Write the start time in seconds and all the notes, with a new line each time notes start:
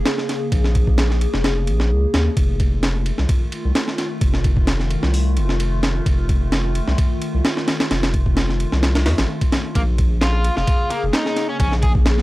Already playing: C#3 A#3 G#4
0.06 snare, ride
0.18 snare
0.29 snare, ride
0.52 A#1, kick, ride
0.64 snare
0.75 kick, ride
0.87 kick
0.98 snare, ride
1.11 snare
1.21 ride
1.33 F1, snare
1.44 snare, ride
1.67 A#1, ride
1.80 snare
1.91 C#2
2.14 D#2, snare, ride
2.37 F1 D#3 A3 F4, kick, ride
2.60 kick, ride
2.83 snare, ride
3.06 ride
3.18 C2, snare
3.29 kick, ride
3.52 ride
3.65 C2
3.75 snare, ride
3.88 snare
3.98 snare, ride
4.21 F1, kick, ride
4.34 snare
4.44 kick, ride
4.57 kick
4.67 snare, ride
4.80 snare
4.91 ride
5.03 C2, snare
5.14 open hi-hat
5.37 F1, ride
5.49 snare
5.60 ride
5.83 snare, ride
6.06 F1, kick, ride
6.29 kick, ride
6.52 snare, ride
6.75 ride
6.88 C2, snare
6.98 kick, ride
7.22 ride
7.34 C2
7.45 snare, ride
7.57 snare
7.68 snare, ride
7.80 snare, ride
7.91 F1, snare, ride
8.03 snare, ride
8.14 kick, ride
8.26 kick
8.37 snare, ride
8.49 snare
8.60 ride
8.72 C2, snare
8.83 snare, ride
8.95 snare, ride
9.06 F2, snare, ride
9.18 A1, snare, ride
9.41 kick, ride
9.52 snare, ride
9.75 A#1 C#3 A#3 G#4, kick, ride
9.98 kick, ride
10.21 F4, snare, ride
10.44 ride
10.57 F1 F4, snare
10.67 kick, ride
10.90 A#3, ride
11.03 F1
11.13 D#4, snare, ride
11.26 snare
11.37 snare, ride
11.49 C#4
11.60 A#1 C#4, kick, ride
11.72 snare
11.83 G#4, kick, ride
11.95 kick
12.06 snare, ride
12.18 snare